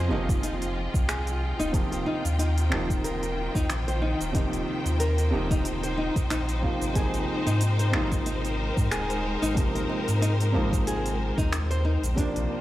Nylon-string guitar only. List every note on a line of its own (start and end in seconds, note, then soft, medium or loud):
0.11 0.28 D#4 medium
0.43 0.54 D#4 medium
1.08 1.58 G#4 medium
1.59 1.73 D#4 loud
1.92 2.05 C5 medium
2.06 2.24 D#4 medium
2.39 2.49 D#4 medium
3.04 3.53 A#4 medium
3.55 3.69 D#4 loud
3.88 4.01 C5 medium
4.02 4.19 D#4 medium
4.34 4.45 D#4 medium
5.00 5.49 A#4 medium
5.51 5.64 D#4 loud
5.83 5.96 C5 medium
5.97 6.15 D#4 medium
6.30 6.41 D#4 medium
6.95 7.45 G#4 medium
7.46 7.60 D#4 loud
7.79 7.92 C5 medium
7.94 8.11 D#4 medium
8.26 8.37 D#4 medium
8.91 9.40 G#4 medium
9.42 9.56 D#4 loud
9.75 9.88 C5 medium
9.89 10.07 D#4 medium
10.21 10.32 D#4 medium
10.87 11.36 G#4 medium
11.38 11.51 D#4 loud
11.70 11.83 C5 medium
11.85 12.02 D#4 medium
12.17 12.28 D4 medium